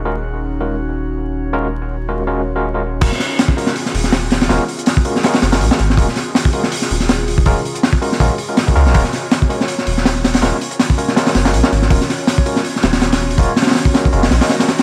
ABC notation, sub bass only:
X:1
M:4/4
L:1/16
Q:"Swing 16ths" 1/4=162
K:Ebm
V:1 name="Sub bass" clef=bass
E,,,16- | E,,,16 | E,,, z8 z E,,,6 | E,,, z8 z G,,,2 B,,, z A,,,2 |
E,,, z8 z E,,,6 | E,,, z6 z B,,, z4 z D,, B,,, | E,,, z8 z E,,,6 | E,,, z8 z G,,,2 B,,, z A,,,2 |
E,,, z8 z E,,,6 | E,,, z6 z G,,,2 B,,, z4 z |]